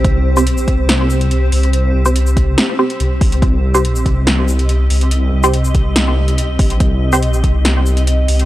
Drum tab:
HH |x---x-x-x--xx-ox|x---x-x-x--xx-ox|x---x-x-x--xx-ox|x---x-x-x--xx-ox|
SH |---x-x----x-----|---x-x----------|---x-x----x-----|---x-x----------|
SD |--------o-------|--------o-------|--------o-------|--------o-------|
BD |o-----o---------|------o-------o-|o-----o---------|------o-------o-|

HH |x---x-x-x--xx-ox|
SH |---x-x----x-----|
SD |--------o-------|
BD |o-----o---------|